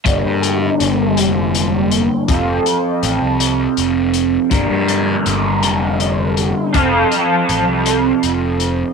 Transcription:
<<
  \new Staff \with { instrumentName = "Overdriven electric guitar" } { \time 6/8 \key g \minor \tempo 4. = 54 <g, d g bes d' g'>2. | <f c' f' a'>2. | <g, d g bes d' bes'>2. | <f c' f' a'>2. | }
  \new Staff \with { instrumentName = "Picked electric bass" } { \clef bass \time 6/8 \key g \minor g,,16 g,8. g,,8 f,,4. | f,,8 r8 a,,16 c,8. f,,4 | g,,16 g,8. g,,8 f,,4. | f,,8 r8 a,,16 c,8. f,,4 | }
  \new DrumStaff \with { instrumentName = "Drums" } \drummode { \time 6/8 <hh bd>8 hh8 hh8 hh8 hh8 hh8 | <hh bd>8 hh8 hh8 hh8 hh8 hh8 | <hh bd>8 hh8 hh8 hh8 hh8 hh8 | <hh bd>8 hh8 hh8 hh8 hh8 hh8 | }
>>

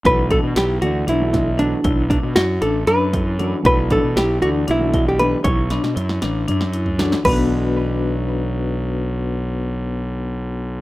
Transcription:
<<
  \new Staff \with { instrumentName = "Hollow-body jazz guitar" } { \time 7/8 \key b \minor \tempo 4 = 116 b'8 a'8 g'8 fis'8 e'4 d'8~ | d'8 d'8 fis'8 a'8 b'4 r8 | b'8 a'8 g'8 fis'8 e'8. g'16 b'8 | cis''2. r8 |
b'2.~ b'8~ | b'2.~ b'8 | }
  \new Staff \with { instrumentName = "Vibraphone" } { \time 7/8 \key b \minor e'8 d'8 e'8 d'8 d'8 e'8 d'8 | e'8 d'8 e'8 d'8 d'8 e'8 d'8 | e'8 d'8 e'8 d'8 d'8 e'8 d'8 | e'8 d'8 e'8 d'8 d'8 e'8 d'8 |
<b d' fis' b'>2.~ <b d' fis' b'>8~ | <b d' fis' b'>2.~ <b d' fis' b'>8 | }
  \new Staff \with { instrumentName = "Grand piano" } { \time 7/8 \key b \minor <e a d' fis'>4 r8 <e a d' fis'>8 r16 <e a d' fis'>16 <e a d' e'>16 r16 <e a d' fis'>8 | r2. <e a d' fis'>16 r16 | <e a d' fis'>4 r8 <e a d' fis'>8 r16 <e a d' fis'>16 <e a d' fis'>16 r16 <e a d' g'>8 | r2. <e a d' fis'>16 r16 |
<e a d' fis'>2.~ <e a d' fis'>8~ | <e a d' fis'>2.~ <e a d' fis'>8 | }
  \new Staff \with { instrumentName = "Fingered electric bass" } { \clef bass \time 7/8 \key b \minor b,,8. b,16 b,,8 d,8 b,,4. | b,,8. b,16 fis,8 a,,8 fis,4. | b,,8. b,16 b,,8 d,8 b,,4. | b,,8. b,16 fis,8 a,,8 fis,4. |
b,,2.~ b,,8~ | b,,2.~ b,,8 | }
  \new DrumStaff \with { instrumentName = "Drums" } \drummode { \time 7/8 <hh bd>8 <hh bd>8 <hh sn>8 hh8 hh8 <hh bd sn>8 hh8 | <hh bd>8 <hh bd>8 <hh sn>8 hh8 hh8 <hh bd>8 hh8 | <hh bd>8 <hh bd>8 <hh sn>8 hh8 hh8 <hh bd>8 hh8 | <hh bd>8 <hh sn>16 sn16 hh16 sn16 <hh sn>8 <hh toml>16 sn16 hh16 tomfh16 <hh sn>16 sn16 |
<cymc bd>4 r4 r4. | r4 r4 r4. | }
>>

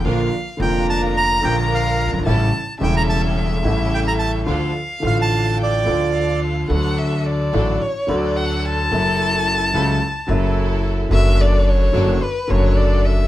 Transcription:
<<
  \new Staff \with { instrumentName = "Bandoneon" } { \time 4/4 \key d \minor \tempo 4 = 108 r4 g''8 a''8 bes''8 g''8 f''8. r16 | r4 g''16 bes''16 a''8 r4 g''16 bes''16 a''8 | r4 f''16 a''8. d''4. r8 | \key d \major r1 |
r1 | r1 | }
  \new Staff \with { instrumentName = "Violin" } { \time 4/4 \key d \minor f''4 bes''2. | a''4 e''2. | f''2 g''4 f''4 | \key d \major fis''8 e''8 d''4 cis''8 d''8 fis''8 a''8~ |
a''2.~ a''8 r8 | e''8 d''8 cis''4 b'8 cis''8 d''8 e''8 | }
  \new Staff \with { instrumentName = "String section" } { \time 4/4 \key d \minor <d' f' bes'>8 r8 <d' f' bes'>4. <d' f' bes'>4. | <cis' g' a'>8 r8 <cis' g' a'>4. <cis' g' a'>4. | <d' f' a'>8 r8 <d' f' a'>4. <d' f' a'>4. | \key d \major <d' fis' a'>4. <d' fis' a'>8 r8 <d' fis' a'>4. |
<e' fis' a'>4. <e' fis' a'>8 r8 <e' fis' a'>4. | <d' fis' a'>4. <d' fis' a'>8 r8 <d' fis' a'>4. | }
  \new Staff \with { instrumentName = "Grand piano" } { \clef bass \time 4/4 \key d \minor << { <bes,, bes, d f bes f'>8 r8 <f,, f, d f bes f'>4. <bes,, bes, d f bes f'>4. | <a,, a, cis g a e'>8 r8 <e,, e, cis g a e'>4. <a,, a, cis g a e'>4. | <d, d f a f'>8 r8 <a,, a, d f a f'>4. <d, d f a f'>4. | \key d \major <d, d fis a fis'>4. <a,, a, d fis a fis'>8 r8 <d, d fis a fis'>4. |
<fis, cis fis a e'>4. <cis, cis fis a e'>8 r8 <fis, cis fis a e'>4. | <fis, d fis a fis'>4. <fis, d fis a fis'>8 r8 <fis, d fis a fis'>4. | } \\ { r2. r8 r32 fis,,32 g,,32 gis,,32 | r1 | r1 | r1 |
r1 | r1 | } >> }
  \new Staff \with { instrumentName = "Upright bass" } { \clef bass \time 4/4 \key d \minor bes,,16. r8 r32 f,,4~ f,,16. r32 bes,,4~ bes,,32 fis,,32 g,,32 gis,,32 | a,,16. r8 r32 e,,4~ e,,16. r32 a,,4~ a,,16. r32 | d,16. r8 r32 a,,4~ a,,16. r32 d,4~ d,16. r32 | \key d \major d,4~ d,16. r32 a,,16. r8 r32 d,4~ d,16. r32 |
fis,,4~ fis,,16. r32 cis,16. r8 r32 fis,,4~ fis,,16. r32 | fis,,4~ fis,,16. r32 fis,,16. r8 r32 fis,,4~ fis,,16. r32 | }
>>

